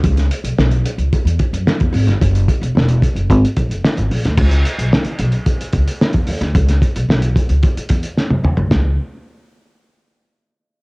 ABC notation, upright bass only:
X:1
M:4/4
L:1/16
Q:1/4=111
K:C#dor
V:1 name="Upright bass" clef=bass
C,,2 z B,,, B,,,2 z C,, z E,, z F,, z E,, G,,, =G,,, | F,,,2 z E,,, E,,,2 z F,,, G,,, z A,,, F,,, z G,,, A,,, =D,, | C,,2 z B,,, z2 B,,, z3 C,, z2 E,, D,, =D,, | C,,2 z B,,, B,,,2 z C,, z2 E,, z2 F,, D,, =D,, |
C,,2 z12 z2 |]